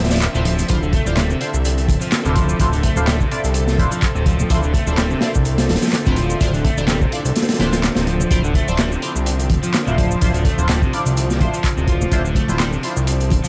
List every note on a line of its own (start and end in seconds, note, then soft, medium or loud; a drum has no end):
0.00 0.28 D1 medium
0.00 13.48 D3 medium
0.00 0.68 F3 medium
0.00 13.48 C4 medium
0.00 8.27 E5 medium
0.04 snare medium
0.04 closed hi-hat medium
0.10 0.20 F3 medium
0.10 0.18 D4 medium
0.10 0.18 E4 medium
0.10 0.18 F4 medium
0.10 0.18 D5 medium
0.10 snare medium
0.10 closed hi-hat medium
0.10 shaker medium
0.16 snare medium
0.16 closed hi-hat medium
0.22 clap loud
0.22 closed hi-hat medium
0.22 shaker medium
0.34 0.64 D1 medium
0.34 0.44 C3 medium
0.34 0.47 D4 medium
0.34 0.47 E4 medium
0.34 0.47 F4 medium
0.34 0.47 C5 medium
0.34 shaker soft
0.45 0.81 F3 medium
0.45 closed hi-hat medium
0.45 high conga medium
0.59 closed hi-hat soft
0.59 low conga medium
0.59 shaker medium
0.68 0.99 D1 loud
0.68 0.78 D4 loud
0.68 0.78 E4 medium
0.68 0.78 F4 medium
0.68 8.30 A4 medium
0.68 0.78 C5 loud
0.68 kick loud
0.68 closed hi-hat medium
0.68 shaker medium
0.82 0.92 D3 medium
0.82 shaker soft
0.93 1.04 A3 loud
0.93 kick loud
0.93 closed hi-hat medium
1.06 1.35 D1 medium
1.06 1.18 D4 medium
1.06 1.18 E4 medium
1.06 1.18 F4 medium
1.06 1.18 C5 medium
1.06 high conga medium
1.06 shaker medium
1.17 1.29 G3 loud
1.17 snare loud
1.17 clap loud
1.17 closed hi-hat medium
1.17 low conga loud
1.17 shaker medium
1.30 1.39 C3 medium
1.30 shaker soft
1.41 1.50 D4 medium
1.41 1.50 E4 medium
1.41 1.50 F4 medium
1.41 1.50 C5 loud
1.41 closed hi-hat medium
1.54 1.90 C2 loud
1.54 shaker medium
1.65 closed hi-hat medium
1.65 shaker medium
1.78 closed hi-hat soft
1.78 shaker soft
1.88 1.97 D1 loud
1.88 kick loud
1.88 closed hi-hat medium
1.88 high conga medium
2.01 2.11 F3 medium
2.01 closed hi-hat soft
2.01 shaker medium
2.12 snare loud
2.12 clap loud
2.12 closed hi-hat medium
2.12 shaker medium
2.25 2.54 D1 medium
2.25 2.35 C3 medium
2.25 2.57 D4 medium
2.25 2.57 E4 medium
2.25 2.57 F4 medium
2.25 2.57 C5 medium
2.25 shaker soft
2.36 2.71 F3 medium
2.36 kick loud
2.36 closed hi-hat medium
2.36 high conga medium
2.49 shaker medium
2.59 2.90 D1 loud
2.59 2.69 D4 loud
2.59 2.69 E4 medium
2.59 2.69 F4 medium
2.59 2.69 C5 loud
2.59 kick loud
2.59 closed hi-hat medium
2.59 shaker soft
2.73 2.82 D3 medium
2.73 closed hi-hat soft
2.73 shaker soft
2.83 2.95 A3 loud
2.83 kick medium
2.83 closed hi-hat medium
2.96 3.25 D1 medium
2.96 3.04 D4 medium
2.96 3.04 E4 medium
2.96 3.04 F4 medium
2.96 3.04 C5 medium
2.96 high conga medium
2.96 shaker medium
3.07 3.19 G3 loud
3.07 snare loud
3.07 clap loud
3.07 closed hi-hat medium
3.07 low conga medium
3.07 shaker medium
3.20 3.30 C3 medium
3.20 kick loud
3.20 shaker soft
3.31 3.40 D4 medium
3.31 3.40 E4 medium
3.31 3.40 F4 medium
3.31 3.40 D5 medium
3.31 closed hi-hat medium
3.44 3.80 C2 medium
3.44 closed hi-hat soft
3.44 shaker medium
3.54 closed hi-hat medium
3.54 shaker medium
3.68 snare medium
3.68 shaker soft
3.79 3.87 D1 loud
3.79 3.93 D4 medium
3.79 3.93 E4 medium
3.79 3.93 F4 medium
3.79 3.93 C5 loud
3.79 kick loud
3.79 closed hi-hat medium
3.79 high conga medium
3.79 low conga medium
3.92 4.01 F3 medium
3.92 closed hi-hat soft
3.92 shaker medium
4.02 kick loud
4.02 clap loud
4.02 closed hi-hat medium
4.02 shaker medium
4.15 4.44 D1 medium
4.15 4.25 C3 medium
4.15 shaker soft
4.26 4.62 F3 medium
4.26 kick medium
4.26 closed hi-hat medium
4.26 high conga medium
4.39 low conga medium
4.39 shaker medium
4.50 4.80 D1 loud
4.50 4.59 D4 loud
4.50 4.59 E4 medium
4.50 4.59 F4 medium
4.50 4.59 C5 loud
4.50 kick loud
4.50 closed hi-hat medium
4.50 shaker medium
4.63 4.73 D3 medium
4.63 shaker soft
4.73 4.85 A3 loud
4.73 kick loud
4.73 closed hi-hat medium
4.87 5.16 D1 loud
4.87 4.99 D4 medium
4.87 4.99 E4 medium
4.87 4.99 F4 medium
4.87 4.99 C5 medium
4.87 high conga medium
4.87 shaker medium
4.97 5.09 G3 loud
4.97 snare loud
4.97 clap loud
4.97 closed hi-hat medium
4.97 low conga medium
4.97 shaker medium
5.10 5.20 C3 medium
5.10 shaker soft
5.21 5.31 D4 medium
5.21 5.31 E4 medium
5.21 5.31 F4 medium
5.21 5.31 C5 loud
5.21 snare loud
5.21 closed hi-hat medium
5.35 5.71 C2 loud
5.35 kick medium
5.35 shaker medium
5.45 closed hi-hat medium
5.45 shaker medium
5.58 snare loud
5.58 closed hi-hat medium
5.58 shaker soft
5.69 5.78 D1 loud
5.69 snare medium
5.69 closed hi-hat medium
5.69 high conga medium
5.75 snare medium
5.75 closed hi-hat medium
5.82 5.92 F3 medium
5.82 snare medium
5.82 closed hi-hat medium
5.82 shaker medium
5.87 snare medium
5.87 closed hi-hat medium
5.93 snare loud
5.93 clap loud
5.93 closed hi-hat medium
5.93 shaker medium
6.06 6.35 D1 medium
6.06 6.16 C3 medium
6.06 6.38 D4 medium
6.06 6.38 E4 medium
6.06 6.38 F4 medium
6.06 6.38 C5 medium
6.06 kick medium
6.06 shaker soft
6.16 6.53 F3 medium
6.16 closed hi-hat medium
6.16 high conga medium
6.30 shaker medium
6.41 6.71 D1 loud
6.41 6.50 D4 loud
6.41 6.50 E4 medium
6.41 6.50 F4 medium
6.41 6.50 C5 loud
6.41 kick loud
6.41 closed hi-hat medium
6.41 shaker medium
6.54 6.64 D3 medium
6.54 closed hi-hat soft
6.54 high conga medium
6.54 shaker soft
6.64 6.76 A3 loud
6.64 kick medium
6.64 closed hi-hat medium
6.78 7.07 D1 loud
6.78 6.85 D4 medium
6.78 6.85 E4 medium
6.78 6.85 F4 medium
6.78 6.85 C5 medium
6.78 high conga medium
6.78 shaker medium
6.87 7.00 G3 loud
6.87 snare loud
6.87 clap loud
6.87 closed hi-hat medium
6.87 low conga medium
6.87 shaker medium
7.01 7.11 C3 medium
7.01 kick medium
7.01 shaker soft
7.12 7.21 D4 medium
7.12 7.21 E4 medium
7.12 7.21 F4 medium
7.12 7.21 D5 medium
7.12 closed hi-hat medium
7.25 7.32 C2 medium
7.25 closed hi-hat soft
7.25 shaker medium
7.36 snare medium
7.36 closed hi-hat medium
7.36 shaker medium
7.42 snare medium
7.42 closed hi-hat medium
7.49 snare medium
7.49 closed hi-hat medium
7.49 shaker soft
7.54 snare medium
7.54 closed hi-hat medium
7.59 7.90 D1 medium
7.59 7.74 D4 medium
7.59 7.74 E4 medium
7.59 7.74 F4 medium
7.59 7.74 C5 loud
7.59 snare loud
7.59 closed hi-hat medium
7.59 high conga medium
7.59 low conga loud
7.73 7.82 F3 medium
7.73 snare loud
7.73 closed hi-hat medium
7.73 shaker medium
7.83 snare loud
7.83 clap loud
7.83 closed hi-hat medium
7.83 shaker medium
7.96 8.25 D1 medium
7.96 8.06 C3 medium
7.96 snare loud
7.96 closed hi-hat medium
7.96 shaker soft
8.07 8.43 F3 medium
8.07 closed hi-hat medium
8.07 high conga medium
8.20 low conga medium
8.20 shaker medium
8.31 8.61 D1 loud
8.31 13.48 F3 medium
8.31 8.40 D4 loud
8.31 13.48 D4 medium
8.31 8.40 E4 medium
8.31 8.40 F4 medium
8.31 8.40 C5 loud
8.31 kick loud
8.31 closed hi-hat loud
8.31 shaker medium
8.44 8.54 D3 medium
8.44 shaker soft
8.54 8.66 A3 loud
8.54 kick medium
8.54 closed hi-hat medium
8.68 8.97 D1 medium
8.68 8.80 D4 medium
8.68 8.80 E4 medium
8.68 8.80 F4 medium
8.68 8.80 C5 medium
8.68 high conga medium
8.68 shaker medium
8.78 8.91 G3 loud
8.78 snare loud
8.78 clap loud
8.78 closed hi-hat medium
8.78 low conga loud
8.78 shaker medium
8.92 9.01 C3 medium
8.92 shaker soft
9.02 9.12 D4 medium
9.02 9.12 E4 medium
9.02 9.12 F4 medium
9.02 9.12 C5 loud
9.02 closed hi-hat medium
9.16 9.51 C2 loud
9.16 shaker medium
9.26 closed hi-hat medium
9.26 shaker medium
9.39 closed hi-hat soft
9.39 shaker soft
9.50 9.59 D1 medium
9.50 kick loud
9.50 closed hi-hat medium
9.50 high conga medium
9.63 9.73 F3 medium
9.63 closed hi-hat soft
9.63 shaker medium
9.74 snare loud
9.74 clap loud
9.74 closed hi-hat medium
9.74 shaker medium
9.87 10.16 D1 medium
9.87 9.96 C3 medium
9.87 10.19 D4 medium
9.87 10.19 E4 medium
9.87 10.19 F4 medium
9.87 10.19 C5 medium
9.87 shaker soft
9.98 10.33 F3 medium
9.98 kick medium
9.98 closed hi-hat medium
9.98 high conga medium
10.11 shaker medium
10.21 10.52 D1 medium
10.21 10.31 D4 loud
10.21 10.31 E4 medium
10.21 10.31 F4 loud
10.21 10.31 C5 loud
10.21 kick loud
10.21 closed hi-hat medium
10.21 shaker medium
10.34 10.44 D3 medium
10.34 closed hi-hat soft
10.34 shaker soft
10.45 10.57 A3 loud
10.45 kick medium
10.45 closed hi-hat medium
10.58 10.87 D1 medium
10.58 10.66 D4 medium
10.58 10.66 E4 medium
10.58 10.66 F4 medium
10.58 10.66 C5 medium
10.58 high conga medium
10.58 shaker medium
10.69 10.81 G3 loud
10.69 snare loud
10.69 clap loud
10.69 closed hi-hat medium
10.69 low conga loud
10.69 shaker medium
10.82 10.92 C3 medium
10.82 kick loud
10.82 shaker soft
10.93 11.02 D4 medium
10.93 11.02 E4 medium
10.93 11.02 F4 medium
10.93 11.02 D5 medium
10.93 closed hi-hat medium
11.06 11.42 C2 loud
11.06 closed hi-hat soft
11.06 shaker medium
11.17 closed hi-hat medium
11.17 shaker medium
11.30 snare soft
11.30 shaker soft
11.40 11.49 D1 loud
11.40 11.55 D4 medium
11.40 11.55 E4 medium
11.40 11.55 F4 medium
11.40 11.55 C5 loud
11.40 kick loud
11.40 closed hi-hat medium
11.40 high conga loud
11.40 low conga loud
11.54 11.63 F3 medium
11.54 closed hi-hat soft
11.54 shaker medium
11.64 kick loud
11.64 clap loud
11.64 closed hi-hat medium
11.64 shaker medium
11.77 12.06 D1 medium
11.77 11.87 C3 medium
11.77 shaker soft
11.88 12.24 F3 medium
11.88 kick medium
11.88 closed hi-hat medium
11.88 high conga medium
12.01 low conga loud
12.01 shaker medium
12.12 12.42 D1 loud
12.12 12.21 D4 loud
12.12 12.21 E4 medium
12.12 12.21 F4 loud
12.12 12.21 C5 loud
12.12 kick loud
12.12 closed hi-hat loud
12.12 shaker medium
12.25 12.35 D3 medium
12.25 shaker soft
12.35 12.47 A3 loud
12.35 kick medium
12.35 closed hi-hat medium
12.48 12.78 D1 medium
12.48 12.61 D4 medium
12.48 12.61 E4 medium
12.48 12.61 F4 medium
12.48 12.61 C5 medium
12.48 high conga medium
12.48 shaker medium
12.60 12.71 G3 loud
12.60 snare loud
12.60 clap loud
12.60 closed hi-hat medium
12.60 low conga medium
12.60 shaker medium
12.73 12.82 C3 medium
12.73 shaker soft
12.83 12.93 D4 medium
12.83 12.93 E4 medium
12.83 12.93 F4 medium
12.83 12.93 C5 loud
12.83 closed hi-hat medium
12.97 13.33 C2 loud
12.97 shaker medium
13.07 closed hi-hat medium
13.07 shaker medium
13.20 closed hi-hat soft
13.20 shaker soft
13.30 13.40 D1 loud
13.30 kick loud
13.30 closed hi-hat medium
13.30 high conga medium
13.44 13.48 F3 medium
13.44 closed hi-hat soft
13.44 shaker medium